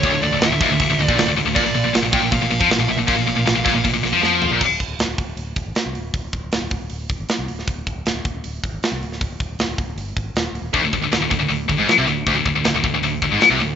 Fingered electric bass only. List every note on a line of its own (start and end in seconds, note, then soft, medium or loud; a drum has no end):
0.03 0.12 D1 medium
0.12 0.21 D1 medium
0.21 0.31 D1 medium
0.31 0.39 D1 medium
0.40 0.48 D1 medium
0.49 0.59 D1 medium
0.61 0.68 D#1 medium
0.69 0.78 D1 medium
0.80 0.88 D1 medium
0.88 0.97 D1 medium
0.97 1.07 D1 medium
1.09 1.16 A#1 loud
1.17 1.25 D1 medium
1.26 1.35 D1 medium
1.35 1.45 D1 medium
1.45 1.55 D1 medium
1.56 1.64 A#1 medium
1.65 1.73 A#1 medium
1.74 1.83 A#1 medium
1.84 1.93 A#1 medium
1.94 2.02 A#1 medium
2.03 2.12 A#1 medium
2.13 2.21 A#1 medium
2.22 2.31 A#1 medium
2.32 2.41 A#1 medium
2.41 2.50 A#1 medium
2.51 2.60 A#1 medium
2.61 2.68 F2 medium
2.69 2.78 A#1 medium
2.79 2.88 A#1 medium
2.89 2.98 A#1 medium
2.99 3.07 A#1 medium
3.08 3.17 A#1 medium
3.19 3.27 A#1 medium
3.28 3.37 A#1 medium
3.38 3.46 A#1 medium
3.48 3.56 A#1 medium
3.56 3.65 A#1 medium
3.65 3.74 A#1 medium
3.75 3.84 A#1 medium
3.85 3.93 A#1 medium
3.94 4.03 A#1 medium
4.03 4.12 A#1 medium
4.12 4.22 F2 medium
4.23 4.49 F2 medium
4.50 4.60 A#1 medium
4.61 4.69 D1 medium
4.69 4.79 D1 medium
4.80 4.87 D1 medium
4.88 4.98 D1 medium
4.99 5.08 D1 medium
5.09 5.18 D1 medium
5.18 5.26 D1 medium
5.27 5.36 D1 medium
5.37 5.55 D1 medium
5.56 5.65 D1 medium
5.66 5.75 G#1 medium
5.77 muted fingered electric bass stroke soft
5.86 5.95 C2 medium
5.96 6.13 D1 medium
6.14 6.23 D1 medium
6.25 6.32 D1 medium
6.33 6.42 D1 medium
6.44 6.52 D1 medium
6.53 6.61 D1 medium
6.62 6.71 D1 medium
6.72 6.81 D1 medium
6.82 6.90 D1 medium
6.91 7.09 D1 medium
7.10 7.19 D1 medium
7.20 7.29 G#1 medium
7.29 muted fingered electric bass stroke soft
7.39 7.48 C2 loud
7.49 7.67 D1 medium
7.68 7.75 D1 medium
7.76 7.85 D1 medium
7.87 7.96 D1 medium
7.96 8.04 D1 medium
8.05 8.14 D1 medium
8.14 8.24 D1 medium
8.25 8.34 D1 medium
8.35 8.43 D1 medium
8.45 8.63 D1 medium
8.63 8.72 D1 medium
8.72 8.82 G#1 medium
8.82 muted fingered electric bass stroke soft
8.92 9.01 C2 medium
9.01 9.19 D1 medium
9.21 9.30 D1 medium
9.30 9.39 D1 medium
9.40 9.49 D1 medium
9.50 9.58 D1 medium
9.59 9.68 D1 medium
9.69 9.78 D1 medium
9.78 9.87 D1 medium
9.87 9.95 D1 medium
9.96 10.14 G1 medium
10.17 10.34 G#1 medium
10.34 10.52 D#1 medium
10.53 10.61 D1 medium
10.62 10.72 D#1 medium
10.74 10.82 D1 medium
10.82 10.92 D1 medium
10.93 11.01 D1 medium
11.02 11.11 D1 medium
11.11 11.20 D1 medium
11.21 11.30 D1 medium
11.31 11.39 D1 medium
11.40 11.49 D1 medium
11.49 11.68 D1 medium
11.69 11.78 D1 medium
11.78 11.88 G#1 medium
11.89 muted fingered electric bass stroke soft
11.98 12.06 C2 medium
12.07 12.25 D1 medium
12.26 12.35 D1 medium
12.35 12.45 D1 medium
12.46 12.55 D1 medium
12.55 12.65 D1 medium
12.65 12.73 D1 medium
12.74 12.83 D1 medium
12.84 12.93 D1 medium
12.93 13.01 D1 medium
13.02 13.20 D1 medium
13.22 13.30 D1 medium
13.30 13.40 G#1 loud
13.41 muted fingered electric bass stroke soft
13.50 13.59 C2 medium
13.59 13.75 D1 medium